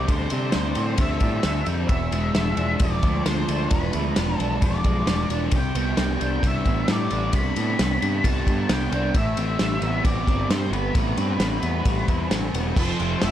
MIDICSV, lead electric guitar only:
0, 0, Header, 1, 2, 480
1, 0, Start_track
1, 0, Key_signature, 0, "minor"
1, 0, Tempo, 452830
1, 89, Time_signature, 4, 2, 24, 8
1, 14111, End_track
2, 0, Start_track
2, 0, Title_t, "Lead electric guitar"
2, 0, Program_c, 0, 29
2, 0, Note_on_c, 0, 74, 82
2, 108, Note_on_c, 0, 72, 78
2, 110, Note_off_c, 0, 74, 0
2, 1073, Note_on_c, 0, 76, 75
2, 1089, Note_off_c, 0, 72, 0
2, 1741, Note_off_c, 0, 76, 0
2, 1995, Note_on_c, 0, 76, 107
2, 2936, Note_off_c, 0, 76, 0
2, 2940, Note_on_c, 0, 74, 108
2, 3426, Note_on_c, 0, 72, 76
2, 3452, Note_off_c, 0, 74, 0
2, 3918, Note_off_c, 0, 72, 0
2, 3922, Note_on_c, 0, 71, 85
2, 4632, Note_off_c, 0, 71, 0
2, 4632, Note_on_c, 0, 69, 85
2, 4898, Note_on_c, 0, 74, 79
2, 4917, Note_off_c, 0, 69, 0
2, 5574, Note_off_c, 0, 74, 0
2, 5900, Note_on_c, 0, 79, 95
2, 6856, Note_on_c, 0, 76, 96
2, 6865, Note_off_c, 0, 79, 0
2, 7329, Note_off_c, 0, 76, 0
2, 7337, Note_on_c, 0, 74, 77
2, 7763, Note_off_c, 0, 74, 0
2, 7796, Note_on_c, 0, 83, 107
2, 8741, Note_on_c, 0, 81, 97
2, 8773, Note_off_c, 0, 83, 0
2, 9223, Note_off_c, 0, 81, 0
2, 9227, Note_on_c, 0, 79, 89
2, 9707, Note_on_c, 0, 76, 99
2, 9714, Note_off_c, 0, 79, 0
2, 10648, Note_off_c, 0, 76, 0
2, 10652, Note_on_c, 0, 74, 100
2, 11135, Note_on_c, 0, 72, 79
2, 11146, Note_off_c, 0, 74, 0
2, 11369, Note_off_c, 0, 72, 0
2, 11373, Note_on_c, 0, 71, 73
2, 13009, Note_off_c, 0, 71, 0
2, 13545, Note_on_c, 0, 72, 83
2, 14031, Note_off_c, 0, 72, 0
2, 14043, Note_on_c, 0, 76, 98
2, 14111, Note_off_c, 0, 76, 0
2, 14111, End_track
0, 0, End_of_file